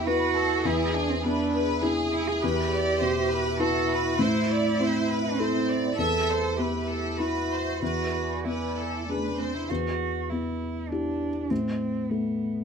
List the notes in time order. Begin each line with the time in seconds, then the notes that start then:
Already playing: E2 B3 E4 E5
0.05 E4 F#4 B4
0.34 A4
0.63 E2 E4 G#4 E5
0.94 D4
1.10 C4
1.23 B3 D4 B4
1.53 B4
1.82 E4 G#4
2.12 E4
2.27 G#4
2.42 E2 E4 G4 B4
2.73 D5
3.00 B2 C5
3.30 B4
3.59 E4 F#4 A4 B4
3.90 B4
4.19 A2 C4 E4 C5
4.51 D5
4.79 C4 C5
5.09 B4
5.37 C4 E4 A4 C5
5.70 D5
5.98 E2 A4 E5
6.31 C5
6.57 B3 G4 B4
6.89 A4
7.19 E4 F#4 B4
7.52 C5
7.82 E2 F#4 B4 D5 G#5
8.44 B3 E4 B4
8.78 A4
9.07 A3 D4 G#4 B4
9.38 C4 C5
9.55 E4
9.70 E2 F#4
10.29 B3 E4
10.88 D4 E4 G4
11.50 A2 C4
12.09 A3 B3